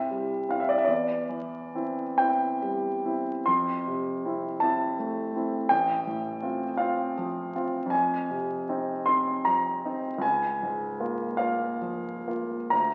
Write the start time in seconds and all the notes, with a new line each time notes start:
Already playing: C2 C4 E4 E5
0.11 G3
0.48 C4 E4 F5
0.60 E5
0.69 D5
0.78 E5
0.85 E2 D5
1.29 E3
1.75 C4 E4
2.18 C4 E4 G5
2.62 G3
3.05 C4 E4
3.46 F2 C6
3.87 C3
4.25 C4 E4
4.60 C4 E4 A5
4.99 A3
5.36 C4 E4
5.69 A1 G5
6.07 A2
6.42 C4 F4
6.77 C4 F4 F5
7.18 F3
7.55 C4 F4
7.86 F2
7.90 G#5
8.31 C3
8.69 C4 D#4
9.06 C4 D#4 C6
9.45 F3 A#5
9.85 C4 D#4
10.18 C#2 G#5
10.63 G#2
11.00 A#3 F4
11.37 A#3 F4 F5
11.81 F3
12.27 A#3 F4
12.70 D2 A#5